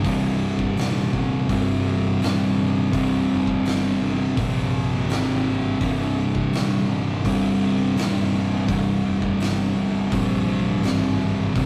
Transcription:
0.03 C1 C2 G2 C3, kick, open hi-hat
0.59 kick
0.76 D#1, snare, open hi-hat
1.12 C2 G2 C3, kick
1.47 G1 C2 G2 C3, kick, open hi-hat
2.20 D#1 C2 G2 C3, open hi-hat
2.24 snare
2.92 C1 C2 G2 C3, kick, open hi-hat
3.28 F1
3.47 kick
3.64 G1, snare, open hi-hat
4.00 C2 G2 C3
4.36 A#1 C2 G2 C3, kick, open hi-hat
5.07 G#1 C2 G2 C3, open hi-hat
5.12 snare
5.80 C1 C2 G2 C3, kick, open hi-hat
6.35 kick
6.52 D#1, snare, open hi-hat
6.88 C2 G2 C3
7.24 G1 C2 G2 C3, kick, open hi-hat
7.95 D#1 C2 G2 C3, open hi-hat
8.00 snare
8.67 C1 C2 G2 C3, kick, open hi-hat
9.03 F1
9.22 kick
9.39 G1, snare, open hi-hat
9.74 C2 G2 C3
10.10 A#1 C2 G2 C3, kick, open hi-hat
10.82 G#1 C2 G2 C3, snare, open hi-hat
11.54 C1 C2 G2 C3, kick, open hi-hat

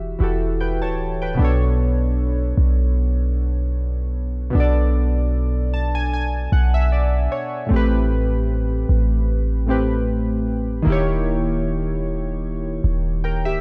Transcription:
Already playing: E1 E3 E4 F#4 G4 E5
0.19 E1 E3 E4 F#4 G4
0.24 A4
0.61 B4 G5
0.82 D1 C#5 A5
1.22 B4 G5
1.35 B2 B3
1.39 B1 D4 A4
1.45 C#5
2.58 B1
4.50 B2 B3
4.55 B1 D4 A4
4.60 D5
5.74 A5
5.95 G#5
6.13 G#5
6.52 B1 F#5
6.74 E5
6.92 D5
7.32 C#5
7.66 A2 A3
7.71 A1 C4 G4
7.76 B4
8.89 A1
9.66 A2 A3 C4 G4
9.71 B4
10.82 D#3 A#3
10.87 D#1 E4 G4
10.92 C#5
12.84 D#1
13.24 A#4 G5
13.45 C#1 G4 E5

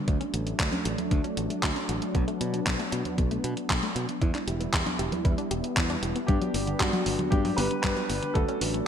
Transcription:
Already playing: D4
0.08 D2 F#3 A3 D4, kick, closed hi-hat
0.21 C#4, closed hi-hat
0.34 A1 F#4, closed hi-hat
0.47 A3, closed hi-hat
0.60 D2 D4, kick, clap, closed hi-hat
0.72 C#4, closed hi-hat, high conga
0.85 A1 F#4, closed hi-hat
0.98 A3, closed hi-hat, high conga
1.11 D2 D4, kick, closed hi-hat
1.24 C#4, closed hi-hat
1.37 A1 F#4, closed hi-hat
1.50 A3, closed hi-hat
1.63 D2 D4, kick, clap, closed hi-hat
1.76 C#4, closed hi-hat
1.89 A1 F#4, closed hi-hat
2.02 A3, closed hi-hat
2.15 B1 B3, kick, closed hi-hat
2.28 A3, closed hi-hat
2.41 B2 D4, closed hi-hat
2.54 F#3, closed hi-hat
2.66 B1 B3, kick, clap, closed hi-hat
2.79 A3, closed hi-hat
2.92 B2 D4, closed hi-hat
3.05 F#3, closed hi-hat, high conga
3.18 B1 B3, kick, closed hi-hat
3.31 A3, closed hi-hat
3.44 B2 D4, closed hi-hat
3.57 F#3, closed hi-hat
3.70 B1 B3, kick, clap, closed hi-hat
3.83 A3, closed hi-hat
3.96 B2 D4, closed hi-hat
4.08 F#3, closed hi-hat
4.21 E2 G3 B3 E4, kick, closed hi-hat
4.35 D4, clap, closed hi-hat
4.47 E1 G4, closed hi-hat
4.60 B3, closed hi-hat
4.73 E2 E4, kick, clap, closed hi-hat
4.86 D4, closed hi-hat, high conga
4.99 E1 G4, closed hi-hat
5.12 B3, closed hi-hat, high conga
5.25 E2 E4, kick, closed hi-hat
5.38 D4, closed hi-hat
5.51 E1 G4, closed hi-hat
5.64 B3, closed hi-hat
5.77 E2 E4, kick, clap, closed hi-hat
5.90 D4, closed hi-hat
6.03 E1 G4, closed hi-hat
6.16 B3, closed hi-hat
6.27 G2 G3 D4 G4, kick, closed hi-hat
6.42 F#3, closed hi-hat
6.54 G1 B3, open hi-hat
6.67 D3, closed hi-hat
6.79 G2 G3 D4 F#4, kick, clap, closed hi-hat
6.93 F#3, closed hi-hat
7.06 G1 B3, open hi-hat
7.19 D3, closed hi-hat, high conga
7.30 G2 G3 D4 G4, kick, closed hi-hat
7.45 F#3, open hi-hat
7.57 G1 B3 G4 B4, open hi-hat
7.71 D3, closed hi-hat
7.82 G2 G3 G4 B4, kick, clap, closed hi-hat
7.97 F#3, closed hi-hat
8.10 G1 B3, open hi-hat
8.23 D3, closed hi-hat
8.34 D2 F#3 A3 D4 F#4 A4, kick, closed hi-hat
8.48 C#4, closed hi-hat
8.61 A1 F#4, open hi-hat
8.74 A3, closed hi-hat

